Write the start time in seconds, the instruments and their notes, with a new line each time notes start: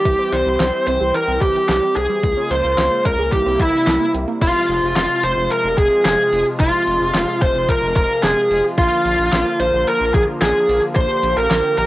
Already playing: analog synth pad G3 G4, lead electric guitar G4
0.05 analog synth bass C2, synth arpeggio sound E3, analog synth pad E3 C4, kick, closed hi-hat
0.19 synth arpeggio sound C4
0.32 analog synth bass C2, synth arpeggio sound E3, lead electric guitar C5, closed hi-hat
0.46 analog synth bass C2
0.60 analog synth bass C2, synth arpeggio sound E3, snare, clap, closed hi-hat
0.87 analog synth bass C2, synth arpeggio sound C4, lead electric guitar C5, closed hi-hat
1.01 analog synth bass C2, synth arpeggio sound G4
1.14 synth arpeggio sound E3, lead electric guitar A#4, closed hi-hat
1.28 analog synth bass C2, synth arpeggio sound C4
1.41 analog synth bass C2, synth arpeggio sound E3, lead electric guitar G4, kick, closed hi-hat
1.55 synth arpeggio sound E3
1.69 analog synth bass C2, synth arpeggio sound E3, lead electric guitar G4, snare, clap, closed hi-hat
1.82 synth arpeggio sound G3
1.96 analog synth bass C2, synth arpeggio sound C4, lead electric guitar G#4, closed hi-hat
2.10 synth arpeggio sound G3
2.23 analog synth bass C#2, analog synth pad C#3 G#3 A#3 F4, synth arpeggio sound F3, kick, closed hi-hat
2.37 synth arpeggio sound C#4
2.51 analog synth bass C#2, synth arpeggio sound F3, lead electric guitar C5, closed hi-hat
2.64 analog synth bass C#2
2.78 analog synth bass C#2, synth arpeggio sound F3, snare, clap, closed hi-hat
3.05 analog synth bass C#2, synth arpeggio sound C#4, lead electric guitar A#4, kick, closed hi-hat
3.19 analog synth bass C#2, synth arpeggio sound G#4
3.32 analog synth bass C2, analog synth pad C3 G3 A#3 E4, synth arpeggio sound E3, lead electric guitar G4, kick, closed hi-hat
3.46 analog synth bass C2, synth arpeggio sound C4
3.60 analog synth bass C2, synth arpeggio sound E3, lead electric guitar E4, kick, closed hi-hat
3.73 synth arpeggio sound E3
3.87 analog synth bass C2, synth arpeggio sound E3, snare, clap, closed hi-hat
4.01 synth arpeggio sound A#3
4.14 analog synth bass C2, synth arpeggio sound C4, closed hi-hat
4.28 synth arpeggio sound A#3
4.42 analog synth bass F1, analog synth pad C3 F3 G#3 F4, lead electric guitar F4, kick, closed hi-hat, crash
4.69 analog synth bass F1, closed hi-hat
4.83 analog synth bass F1
4.96 analog synth bass F1, lead electric guitar F4, snare, clap, closed hi-hat
5.23 analog synth bass F1, lead electric guitar C5, closed hi-hat
5.37 analog synth bass F1
5.51 lead electric guitar A#4, closed hi-hat
5.64 analog synth bass F1
5.78 analog synth bass F1, lead electric guitar G#4, kick, closed hi-hat
6.05 analog synth bass F1, lead electric guitar G#4, snare, clap, closed hi-hat
6.33 analog synth bass F1, open hi-hat
6.60 analog synth bass F1, lead electric guitar F4, kick, closed hi-hat
6.87 analog synth bass F1, closed hi-hat
7.01 analog synth bass F1
7.14 analog synth bass F1, snare, clap, closed hi-hat
7.42 analog synth bass F1, lead electric guitar C5, kick, closed hi-hat
7.55 analog synth bass F1
7.69 lead electric guitar A#4, kick, closed hi-hat
7.83 analog synth bass F1
7.96 analog synth bass F1, lead electric guitar A#4, kick, closed hi-hat
8.23 analog synth bass F1, lead electric guitar G#4, snare, clap, closed hi-hat
8.51 analog synth bass F1, open hi-hat
8.78 analog synth bass A#1, analog synth pad D3 A#3, lead electric guitar F4, kick, closed hi-hat
9.05 analog synth bass A#1, closed hi-hat
9.19 analog synth bass A#1
9.32 analog synth bass A#1, snare, clap, closed hi-hat
9.60 analog synth bass A#1, lead electric guitar C5, closed hi-hat
9.73 analog synth bass A#1
9.87 lead electric guitar A#4, closed hi-hat
10.01 analog synth bass A#1
10.14 analog synth bass A#1, lead electric guitar G#4, kick, closed hi-hat
10.42 analog synth bass A#1, lead electric guitar G#4, snare, clap, closed hi-hat
10.69 analog synth bass A#1, open hi-hat
10.96 analog synth bass A#1, analog synth pad G4, lead electric guitar C5, kick, closed hi-hat
11.24 analog synth bass A#1, closed hi-hat
11.37 analog synth bass A#1, lead electric guitar A#4
11.51 analog synth bass A#1, snare, clap, closed hi-hat
11.78 analog synth bass A#1, lead electric guitar A#4, closed hi-hat